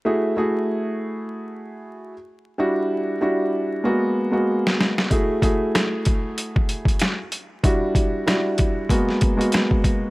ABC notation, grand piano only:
X:1
M:4/4
L:1/16
Q:"Swing 16ths" 1/4=95
K:E
V:1 name="Grand piano"
[A,EFG]2 [A,EFG]8- [A,EFG]3 z3 | [=G,=DEF]4 [G,DEF]4 [^G,^A,B,F]3 [G,A,B,F]4- [G,A,B,F] | [A,EFG]2 [A,EFG]8- [A,EFG]3 z3 | [=G,=DEF]4 [G,DEF]4 [^G,^A,B,F]3 [G,A,B,F]4- [G,A,B,F] |]